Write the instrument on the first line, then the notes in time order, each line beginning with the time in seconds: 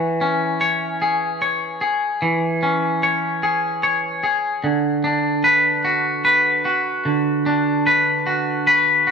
clean electric guitar
Already playing: E3 E4 C#5
0.21 C#4
0.61 C#5
1.02 G#4
1.42 C#5
1.81 G#4
2.22 E3
2.63 C#4
3.03 C#5
3.43 G#4
3.83 C#5
4.24 G#4
4.64 D3
5.04 D4
5.44 B4
5.85 F#4
6.25 B4
6.65 F#4
7.05 D3
7.46 D4
7.87 B4
8.27 F#4
8.67 B4
9.07 F#4